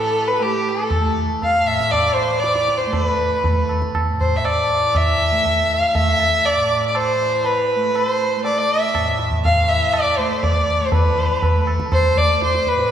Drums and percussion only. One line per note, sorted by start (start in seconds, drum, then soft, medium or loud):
0.40 tabla tin medium
0.90 tabla na medium
0.90 tabla ge medium
1.42 tabla tin medium
1.42 tabla ge medium
1.68 tabla na soft
1.81 tabla ke medium
1.93 tabla na medium
1.93 tabla ge medium
2.19 tabla ge soft
2.44 tabla te medium
2.55 tabla te medium
2.68 tabla ke soft
2.81 tabla te soft
2.93 tabla tin medium
2.93 tabla ge medium
3.44 tabla tin medium
3.44 tabla ge medium
3.69 tabla na medium
3.82 tabla ke medium
3.95 tabla na medium
3.95 tabla ge medium
4.20 tabla ge soft
4.45 tabla na medium
4.95 tabla na medium
4.95 tabla ge medium
5.45 tabla tin medium
5.45 tabla ge medium
5.95 tabla tin medium
5.95 tabla ge medium
6.20 tabla na soft
6.45 tabla na medium
6.95 tabla na medium
7.44 tabla tin medium
7.95 tabla na medium
8.45 tabla tin medium
8.95 tabla na medium
8.95 tabla ge medium
9.19 tabla te medium
9.31 tabla ge soft
9.45 tabla tin medium
9.45 tabla ge medium
9.93 tabla na medium
10.43 tabla tin medium
10.43 tabla ge medium
10.92 tabla tin medium
10.92 tabla ge medium
11.43 tabla tin medium
11.43 tabla ge medium
11.67 tabla na medium
11.80 tabla ke medium
11.92 tabla na medium
11.92 tabla ge medium
12.17 tabla ge soft
12.42 tabla te medium
12.55 tabla te medium
12.67 tabla ke medium
12.79 tabla te medium